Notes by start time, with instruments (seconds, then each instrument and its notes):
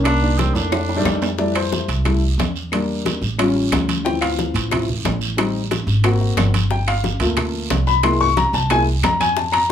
Already playing: upright bass C2
0.04 trombone A#3, tenor saxophone D4, high bongo, high conga, high timbale, long guiro, claves
0.21 upright piano D#3 A#3 D4, high conga
0.38 trombone G3, tenor saxophone C4, high bongo, high conga, high timbale, low timbale, short guiro
0.55 upright bass F2, trombone A3, tenor saxophone D4, high bongo, high conga, high timbale, short guiro
0.72 high bongo, high conga, high timbale, long guiro, claves
0.89 high bongo, high conga, high timbale
0.96 upright piano D#3 G3 A3 D4
1.04 upright bass F2, high bongo, low bongo, high conga, low timbale, short guiro, claves
1.22 high bongo, low timbale, short guiro
1.38 upright piano G3 A3 E4 D5, high bongo, high conga, long guiro
1.51 upright piano B4, claves
1.56 upright piano C5, high conga, high timbale
1.72 high bongo, high conga, low timbale, short guiro
1.88 upright bass C2, high conga, high timbale, short guiro
2.05 upright piano G3 A3 E4, high bongo, high conga, low conga, high timbale, long guiro, claves
2.23 high conga
2.38 upright bass E2, high bongo, low bongo, high conga, high timbale, low timbale, short guiro
2.56 high conga, short guiro
2.72 upright piano G3 A#3 D4, high bongo, high conga, high timbale, long guiro, claves
2.89 high conga
3.05 high bongo, high conga, high timbale, low timbale, short guiro
3.21 upright bass A1, high bongo, high conga, short guiro
3.38 upright piano G3 C#4 F4, high bongo, high conga, high timbale, long guiro, claves
3.56 high bongo, high conga
3.72 upright bass D2, high bongo, low bongo, high conga, high timbale, low timbale, short guiro, claves
3.88 high bongo, high conga, high timbale, short guiro
4.04 upright piano E3 F3 C4 G5, high bongo, high conga, long guiro
4.21 upright piano F5, high timbale, claves
4.38 high bongo, high conga, low timbale, short guiro
4.54 upright bass A1, high conga, high timbale, short guiro
4.71 upright piano F3 C4 E4, high bongo, high conga, low conga, high timbale, long guiro, claves
4.88 high conga, low conga
5.05 upright bass A1, high bongo, low bongo, high conga, high timbale, low timbale, short guiro
5.21 short guiro
5.37 upright piano G3 C4 D#4, high bongo, high timbale, long guiro, claves
5.56 high conga
5.71 high bongo, high conga, high timbale, low timbale, short guiro
5.87 upright bass G#1, high bongo, high conga, short guiro
6.04 upright piano A#3 C4 F#4, high bongo, high conga, high timbale, long guiro, claves
6.21 high bongo, high conga
6.37 upright bass G1, high bongo, low bongo, high conga, high timbale, low timbale, short guiro, claves
6.54 high bongo, high conga, high timbale, short guiro
6.71 upright piano G5, high bongo, high conga, long guiro
6.87 upright piano F5, high conga, high timbale, claves
7.04 high bongo, high conga, low timbale, short guiro
7.20 upright bass D2, upright piano A3 A#3 F4, high conga, high timbale, short guiro
7.37 high bongo, high conga, low conga, high timbale, long guiro, claves
7.54 high conga
7.70 upright bass C2, high bongo, low bongo, high conga, high timbale, low timbale, short guiro
7.87 upright piano B5, high conga, short guiro
8.03 upright piano G#3 A#3 E4 C6, high bongo, high conga, high timbale, long guiro, claves
8.20 upright piano C#6, high conga
8.37 upright piano A#5, high bongo, high conga, high timbale, low timbale, short guiro
8.53 upright bass C2, upright piano A5, high bongo, high conga, short guiro
8.70 upright piano G#3 A#3 E4 G#5, high bongo, high conga, high timbale, long guiro, claves
8.87 high bongo, high conga
9.03 upright bass F2, upright piano A#5, high bongo, low bongo, high conga, high timbale, low timbale, short guiro, claves
9.20 upright piano G#5, high bongo, high conga, high timbale, short guiro
9.37 upright piano A5, high bongo, high conga, long guiro
9.52 upright piano A#5, high conga, high timbale, claves